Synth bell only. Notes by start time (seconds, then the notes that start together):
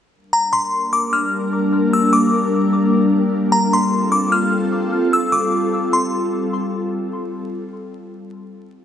0.33 A#5
0.53 C6
0.93 D6
1.13 F6
1.93 E6
2.13 D6
3.52 A#5
3.73 C6
4.12 D6
4.32 F6
5.13 E6
5.32 D6
5.93 C6